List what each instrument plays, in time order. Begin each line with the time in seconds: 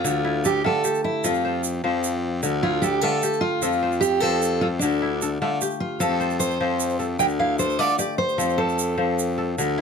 Already playing: kora F3 A3 A4 C5, steel-string acoustic guitar F4
0.04 baritone saxophone D2, kora D3, shaker
0.24 kora E4
0.44 steel-string acoustic guitar G4, kora A4, shaker
0.64 baritone saxophone D3, kora A3 F4, steel-string acoustic guitar A4
0.84 kora G4, shaker
0.95 shaker
1.04 steel-string acoustic guitar E4
1.24 baritone saxophone F2, kora F3 A4, steel-string acoustic guitar F4, shaker
1.34 shaker
1.45 kora C5
1.64 shaker
1.83 baritone saxophone F2, kora F3 C5
2.04 shaker
2.43 baritone saxophone D2, kora D3, shaker
2.63 kora E4, steel-string acoustic guitar F4
2.82 steel-string acoustic guitar G4, kora A4, shaker
3.01 baritone saxophone D3, kora A3 F4, steel-string acoustic guitar A4
3.23 kora G4, shaker
3.33 shaker
3.41 steel-string acoustic guitar F4
3.62 baritone saxophone F2, kora F3 A4, shaker
3.72 shaker
3.83 kora C5
3.92 shaker
4.01 steel-string acoustic guitar G4, shaker
4.20 baritone saxophone F2, kora F3 C5, steel-string acoustic guitar A4
4.42 shaker
4.61 steel-string acoustic guitar F4, kora A4
4.79 baritone saxophone D2, kora D3, steel-string acoustic guitar D4, shaker
5.02 kora E4
5.22 kora A4, shaker
5.41 baritone saxophone D3, kora A3 F4
5.61 kora G4, shaker
5.80 steel-string acoustic guitar F4
6.00 baritone saxophone F2, kora F3 A4, steel-string acoustic guitar A4, shaker
6.20 kora C5, shaker
6.30 shaker
6.40 steel-string acoustic guitar C5, shaker
6.51 shaker
6.60 baritone saxophone F2, kora F3 C5
6.80 shaker
6.90 shaker
6.99 kora A4, shaker
7.19 baritone saxophone D2, kora D3, steel-string acoustic guitar G5, shaker
7.29 shaker
7.39 kora E4, steel-string acoustic guitar F5
7.59 kora A4, steel-string acoustic guitar C5, shaker
7.70 shaker
7.79 baritone saxophone D3, kora A3 F4, steel-string acoustic guitar D5
7.89 shaker
7.99 kora G4, steel-string acoustic guitar D5, shaker
8.18 steel-string acoustic guitar C5
8.29 shaker
8.38 baritone saxophone F2, kora F3 A4, shaker
8.58 steel-string acoustic guitar A4, kora C5
8.69 shaker
8.79 shaker
8.97 baritone saxophone F2, kora F3 C5
9.19 shaker
9.38 kora A4
9.58 baritone saxophone D2, kora D3, shaker
9.78 kora E4